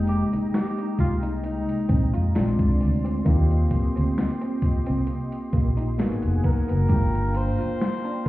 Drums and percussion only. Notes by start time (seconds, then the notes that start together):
0.07 closed hi-hat
0.33 closed hi-hat
0.54 snare, closed hi-hat
0.78 closed hi-hat
0.99 kick, closed hi-hat
1.23 closed hi-hat
1.44 closed hi-hat
1.69 closed hi-hat
1.89 kick, closed hi-hat
2.14 closed hi-hat
2.35 snare, closed hi-hat
2.59 kick, closed hi-hat
2.80 open hi-hat
3.06 closed hi-hat
3.26 kick, closed hi-hat
3.51 closed hi-hat
3.71 kick, closed hi-hat
3.97 closed hi-hat
4.18 snare, closed hi-hat
4.42 closed hi-hat
4.62 kick, closed hi-hat
4.86 closed hi-hat
5.07 closed hi-hat
5.32 closed hi-hat
5.53 kick, closed hi-hat
5.78 closed hi-hat
5.99 snare, closed hi-hat
6.23 closed hi-hat
6.44 kick, open hi-hat
6.69 closed hi-hat
6.89 kick, closed hi-hat
7.15 closed hi-hat
7.35 closed hi-hat
7.61 closed hi-hat
7.81 snare, closed hi-hat
8.05 closed hi-hat